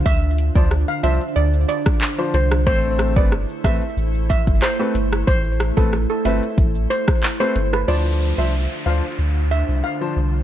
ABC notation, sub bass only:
X:1
M:4/4
L:1/16
Q:1/4=92
K:Ddor
V:1 name="Sub bass" clef=bass
D,,3 D,,2 z C,, z D,,2 z4 C,,2 | A,,,3 G,,,2 z A,,, z A,,,3 G,,, z2 G,,,2 | A,,,3 A,,,2 z G,,, z A,,,2 z4 G,,,2 | D,,3 C,,2 z D,, z D,,3 C,, z2 C,,2 |]